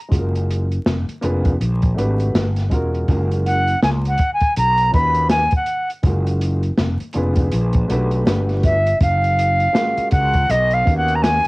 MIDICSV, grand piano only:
0, 0, Header, 1, 2, 480
1, 0, Start_track
1, 0, Key_signature, 6, "major"
1, 0, Tempo, 740741
1, 77, Time_signature, 4, 2, 24, 8
1, 7436, End_track
2, 0, Start_track
2, 0, Title_t, "Grand piano"
2, 0, Program_c, 0, 0
2, 57, Note_on_c, 0, 56, 59
2, 63, Note_on_c, 0, 61, 52
2, 67, Note_on_c, 0, 65, 58
2, 72, Note_on_c, 0, 66, 53
2, 79, Note_on_c, 0, 68, 48
2, 121, Note_on_c, 0, 70, 73
2, 129, Note_off_c, 0, 68, 0
2, 423, Note_off_c, 0, 56, 0
2, 426, Note_off_c, 0, 61, 0
2, 428, Note_off_c, 0, 65, 0
2, 431, Note_off_c, 0, 66, 0
2, 455, Note_off_c, 0, 70, 0
2, 784, Note_on_c, 0, 58, 90
2, 790, Note_on_c, 0, 62, 73
2, 796, Note_on_c, 0, 65, 81
2, 800, Note_on_c, 0, 68, 78
2, 806, Note_on_c, 0, 71, 93
2, 974, Note_off_c, 0, 58, 0
2, 977, Note_off_c, 0, 62, 0
2, 980, Note_off_c, 0, 65, 0
2, 981, Note_off_c, 0, 68, 0
2, 985, Note_off_c, 0, 71, 0
2, 1262, Note_on_c, 0, 57, 78
2, 1270, Note_on_c, 0, 62, 71
2, 1275, Note_on_c, 0, 66, 71
2, 1281, Note_on_c, 0, 67, 69
2, 1287, Note_on_c, 0, 71, 86
2, 1568, Note_off_c, 0, 57, 0
2, 1572, Note_off_c, 0, 62, 0
2, 1574, Note_off_c, 0, 66, 0
2, 1577, Note_off_c, 0, 67, 0
2, 1580, Note_off_c, 0, 71, 0
2, 1747, Note_on_c, 0, 56, 74
2, 1754, Note_on_c, 0, 61, 62
2, 1762, Note_on_c, 0, 65, 60
2, 1764, Note_on_c, 0, 66, 72
2, 1774, Note_on_c, 0, 70, 86
2, 1980, Note_off_c, 0, 56, 0
2, 1990, Note_off_c, 0, 61, 0
2, 1990, Note_on_c, 0, 56, 63
2, 1992, Note_off_c, 0, 65, 0
2, 1998, Note_off_c, 0, 66, 0
2, 1999, Note_on_c, 0, 61, 67
2, 2002, Note_on_c, 0, 65, 57
2, 2005, Note_off_c, 0, 70, 0
2, 2008, Note_on_c, 0, 66, 66
2, 2014, Note_on_c, 0, 70, 85
2, 2292, Note_off_c, 0, 56, 0
2, 2296, Note_off_c, 0, 61, 0
2, 2298, Note_off_c, 0, 65, 0
2, 2301, Note_off_c, 0, 66, 0
2, 2304, Note_off_c, 0, 70, 0
2, 3181, Note_on_c, 0, 46, 68
2, 3188, Note_on_c, 0, 61, 63
2, 3195, Note_on_c, 0, 63, 60
2, 3202, Note_on_c, 0, 66, 53
2, 3202, Note_on_c, 0, 71, 65
2, 3487, Note_off_c, 0, 46, 0
2, 3491, Note_off_c, 0, 61, 0
2, 3494, Note_off_c, 0, 63, 0
2, 3498, Note_off_c, 0, 66, 0
2, 3498, Note_off_c, 0, 71, 0
2, 3908, Note_on_c, 0, 56, 60
2, 3911, Note_on_c, 0, 61, 55
2, 3917, Note_on_c, 0, 65, 55
2, 3922, Note_on_c, 0, 66, 57
2, 3931, Note_on_c, 0, 70, 66
2, 4268, Note_off_c, 0, 56, 0
2, 4270, Note_off_c, 0, 61, 0
2, 4273, Note_off_c, 0, 65, 0
2, 4276, Note_off_c, 0, 66, 0
2, 4280, Note_off_c, 0, 70, 0
2, 4626, Note_on_c, 0, 46, 83
2, 4631, Note_on_c, 0, 62, 74
2, 4638, Note_on_c, 0, 65, 77
2, 4645, Note_on_c, 0, 68, 77
2, 4649, Note_on_c, 0, 71, 85
2, 5103, Note_off_c, 0, 62, 0
2, 5107, Note_on_c, 0, 57, 85
2, 5113, Note_on_c, 0, 62, 73
2, 5120, Note_on_c, 0, 66, 70
2, 5124, Note_off_c, 0, 71, 0
2, 5126, Note_on_c, 0, 67, 66
2, 5134, Note_on_c, 0, 71, 91
2, 5314, Note_off_c, 0, 46, 0
2, 5319, Note_off_c, 0, 65, 0
2, 5323, Note_off_c, 0, 68, 0
2, 5329, Note_off_c, 0, 57, 0
2, 5338, Note_off_c, 0, 62, 0
2, 5339, Note_on_c, 0, 57, 76
2, 5344, Note_off_c, 0, 66, 0
2, 5347, Note_on_c, 0, 62, 76
2, 5349, Note_off_c, 0, 67, 0
2, 5353, Note_off_c, 0, 71, 0
2, 5354, Note_on_c, 0, 66, 71
2, 5359, Note_on_c, 0, 67, 73
2, 5363, Note_on_c, 0, 71, 86
2, 5646, Note_off_c, 0, 57, 0
2, 5650, Note_off_c, 0, 62, 0
2, 5653, Note_off_c, 0, 66, 0
2, 5656, Note_off_c, 0, 67, 0
2, 5658, Note_off_c, 0, 71, 0
2, 6304, Note_on_c, 0, 56, 75
2, 6309, Note_on_c, 0, 61, 65
2, 6314, Note_on_c, 0, 65, 63
2, 6322, Note_on_c, 0, 66, 66
2, 6325, Note_on_c, 0, 70, 71
2, 6667, Note_off_c, 0, 56, 0
2, 6669, Note_off_c, 0, 61, 0
2, 6672, Note_off_c, 0, 65, 0
2, 6676, Note_off_c, 0, 66, 0
2, 6677, Note_off_c, 0, 70, 0
2, 7028, Note_on_c, 0, 59, 59
2, 7031, Note_on_c, 0, 61, 59
2, 7036, Note_on_c, 0, 63, 54
2, 7045, Note_on_c, 0, 66, 55
2, 7051, Note_on_c, 0, 70, 71
2, 7389, Note_off_c, 0, 59, 0
2, 7390, Note_off_c, 0, 61, 0
2, 7393, Note_off_c, 0, 63, 0
2, 7397, Note_off_c, 0, 66, 0
2, 7400, Note_off_c, 0, 70, 0
2, 7436, End_track
0, 0, End_of_file